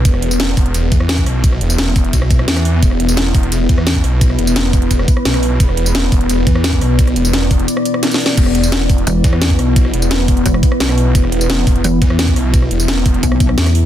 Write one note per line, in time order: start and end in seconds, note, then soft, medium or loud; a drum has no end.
0.00 13.86 B3 medium
0.00 13.86 E4 medium
0.05 0.56 E1 medium
0.05 2.82 E5 medium
0.05 kick loud
0.05 closed hi-hat medium
0.05 tambourine soft
0.14 cross-stick soft
0.22 closed hi-hat medium
0.31 tambourine medium
0.40 snare loud
0.40 closed hi-hat medium
0.40 tambourine soft
0.57 0.73 E1 loud
0.57 kick loud
0.57 open hi-hat medium
0.57 tambourine soft
0.66 closed hi-hat soft
0.74 0.90 E1 loud
0.74 closed hi-hat medium
0.74 tambourine soft
0.92 1.25 E2 loud
0.92 kick loud
0.92 closed hi-hat medium
0.92 tambourine soft
1.00 cross-stick medium
1.09 snare loud
1.09 closed hi-hat medium
1.09 tambourine soft
1.18 kick medium
1.18 closed hi-hat soft
1.26 1.60 B1 loud
1.26 cross-stick soft
1.26 open hi-hat medium
1.44 kick loud
1.44 closed hi-hat medium
1.44 tambourine soft
1.52 cross-stick soft
1.61 1.94 E1 loud
1.61 closed hi-hat medium
1.70 tambourine medium
1.78 snare loud
1.78 closed hi-hat medium
1.78 tambourine soft
1.96 2.12 E1 loud
1.96 kick loud
1.96 open hi-hat medium
1.96 tambourine soft
2.04 closed hi-hat soft
2.13 2.46 B1 loud
2.13 kick medium
2.13 closed hi-hat medium
2.13 tambourine soft
2.22 cross-stick medium
2.30 kick loud
2.30 closed hi-hat medium
2.30 tambourine soft
2.39 cross-stick medium
2.48 2.81 E2 loud
2.48 snare loud
2.48 closed hi-hat medium
2.48 tambourine soft
2.57 cross-stick medium
2.57 closed hi-hat soft
2.57 tambourine soft
2.65 open hi-hat medium
2.83 3.33 E1 loud
2.83 5.59 B4 medium
2.83 kick loud
2.83 closed hi-hat medium
2.83 tambourine medium
2.91 cross-stick soft
3.00 closed hi-hat medium
3.09 tambourine medium
3.17 snare loud
3.17 closed hi-hat medium
3.17 tambourine medium
3.35 3.51 E1 medium
3.35 kick loud
3.35 open hi-hat medium
3.35 tambourine soft
3.43 closed hi-hat soft
3.52 3.68 E1 loud
3.52 closed hi-hat medium
3.52 tambourine soft
3.69 4.03 E2 medium
3.69 kick loud
3.69 closed hi-hat medium
3.69 tambourine soft
3.78 cross-stick medium
3.87 snare loud
3.87 closed hi-hat medium
3.87 tambourine medium
3.95 kick medium
3.95 closed hi-hat soft
4.04 4.37 B1 loud
4.04 cross-stick soft
4.04 open hi-hat medium
4.21 kick loud
4.21 closed hi-hat medium
4.21 tambourine soft
4.30 cross-stick soft
4.39 4.72 E1 loud
4.39 closed hi-hat medium
4.47 tambourine medium
4.56 snare loud
4.56 closed hi-hat loud
4.56 tambourine medium
4.73 4.89 E1 loud
4.73 kick loud
4.73 open hi-hat medium
4.73 tambourine soft
4.82 closed hi-hat soft
4.91 5.07 E1 loud
4.91 kick medium
4.91 closed hi-hat medium
4.91 tambourine medium
4.99 cross-stick medium
5.08 kick loud
5.08 closed hi-hat medium
5.08 tambourine soft
5.17 cross-stick medium
5.25 5.59 B1 loud
5.25 snare loud
5.25 closed hi-hat medium
5.25 tambourine medium
5.34 cross-stick medium
5.34 closed hi-hat soft
5.43 open hi-hat medium
5.60 6.11 E1 loud
5.60 8.36 D5 medium
5.60 kick loud
5.60 closed hi-hat medium
5.60 tambourine medium
5.69 cross-stick soft
5.77 closed hi-hat medium
5.86 tambourine medium
5.95 snare loud
5.95 closed hi-hat loud
5.95 tambourine medium
6.12 6.28 E1 loud
6.12 kick loud
6.12 open hi-hat medium
6.12 tambourine soft
6.21 closed hi-hat soft
6.29 6.45 E1 loud
6.29 closed hi-hat medium
6.29 tambourine medium
6.47 6.80 E2 loud
6.47 kick loud
6.47 closed hi-hat medium
6.47 tambourine soft
6.55 cross-stick medium
6.64 snare loud
6.64 closed hi-hat loud
6.64 tambourine medium
6.73 kick medium
6.73 closed hi-hat soft
6.81 7.15 B1 loud
6.81 cross-stick soft
6.81 open hi-hat medium
6.99 kick loud
6.99 closed hi-hat medium
6.99 tambourine soft
7.07 cross-stick soft
7.07 closed hi-hat soft
7.16 7.49 E1 medium
7.16 closed hi-hat medium
7.16 tambourine soft
7.25 tambourine medium
7.33 snare loud
7.33 closed hi-hat loud
7.33 tambourine medium
7.51 7.67 E1 loud
7.51 kick loud
7.51 open hi-hat medium
7.51 tambourine soft
7.59 closed hi-hat soft
7.68 closed hi-hat loud
7.68 tambourine medium
7.77 cross-stick medium
7.85 closed hi-hat medium
7.85 tambourine soft
7.94 cross-stick medium
8.03 snare medium
8.03 closed hi-hat loud
8.03 tambourine soft
8.11 snare medium
8.11 closed hi-hat soft
8.11 tambourine soft
8.20 open hi-hat medium
8.26 snare medium
8.38 8.88 E1 medium
8.38 11.14 B4 medium
8.38 kick loud
8.38 closed hi-hat loud
8.38 crash medium
8.38 tambourine soft
8.46 cross-stick soft
8.55 closed hi-hat medium
8.64 tambourine medium
8.72 snare loud
8.72 closed hi-hat loud
8.72 tambourine medium
8.90 9.05 E1 loud
8.90 kick loud
8.90 open hi-hat medium
8.90 tambourine soft
8.98 closed hi-hat soft
9.07 9.23 E1 loud
9.07 closed hi-hat medium
9.07 tambourine medium
9.24 9.58 E2 loud
9.24 kick loud
9.24 closed hi-hat medium
9.24 tambourine soft
9.33 cross-stick medium
9.42 snare loud
9.42 closed hi-hat loud
9.42 tambourine soft
9.50 kick medium
9.50 closed hi-hat soft
9.59 9.92 B1 loud
9.59 cross-stick soft
9.59 open hi-hat medium
9.76 kick loud
9.76 closed hi-hat medium
9.76 tambourine soft
9.85 cross-stick soft
9.94 10.27 E1 medium
9.94 closed hi-hat medium
10.02 tambourine medium
10.11 snare loud
10.11 closed hi-hat loud
10.11 tambourine soft
10.28 10.44 E1 loud
10.28 kick loud
10.28 open hi-hat medium
10.28 tambourine soft
10.37 closed hi-hat soft
10.46 10.62 E1 loud
10.46 kick medium
10.46 closed hi-hat loud
10.46 tambourine soft
10.54 cross-stick medium
10.63 kick loud
10.63 closed hi-hat medium
10.63 tambourine soft
10.72 cross-stick medium
10.80 11.14 B1 loud
10.80 snare loud
10.80 closed hi-hat medium
10.80 tambourine soft
10.89 cross-stick medium
10.89 closed hi-hat soft
10.98 open hi-hat medium
11.15 11.66 E1 loud
11.15 13.86 E5 loud
11.15 kick loud
11.15 closed hi-hat medium
11.15 tambourine soft
11.24 cross-stick soft
11.32 closed hi-hat medium
11.41 tambourine medium
11.50 snare loud
11.50 closed hi-hat medium
11.50 tambourine soft
11.67 11.83 E1 loud
11.67 kick loud
11.67 open hi-hat medium
11.67 tambourine soft
11.76 closed hi-hat soft
11.84 12.00 E1 loud
11.84 closed hi-hat medium
11.84 tambourine soft
12.02 12.35 E2 medium
12.02 kick loud
12.02 closed hi-hat medium
12.02 tambourine soft
12.10 cross-stick medium
12.19 snare loud
12.19 closed hi-hat medium
12.19 tambourine soft
12.28 kick medium
12.28 closed hi-hat soft
12.36 12.70 B1 loud
12.36 cross-stick soft
12.36 open hi-hat medium
12.54 kick loud
12.54 closed hi-hat medium
12.54 tambourine soft
12.62 cross-stick soft
12.71 13.04 E1 loud
12.71 closed hi-hat medium
12.80 tambourine medium
12.88 snare loud
12.88 closed hi-hat medium
12.88 tambourine medium
13.06 13.22 E1 loud
13.06 kick loud
13.06 open hi-hat medium
13.06 tambourine soft
13.14 closed hi-hat soft
13.23 13.56 B1 loud
13.23 kick medium
13.23 closed hi-hat medium
13.23 tambourine soft
13.32 cross-stick medium
13.40 kick loud
13.40 closed hi-hat medium
13.40 tambourine soft
13.49 cross-stick medium
13.58 13.86 E2 loud
13.58 snare loud
13.58 closed hi-hat medium
13.58 tambourine soft
13.66 cross-stick medium
13.66 closed hi-hat soft
13.66 tambourine soft
13.75 open hi-hat medium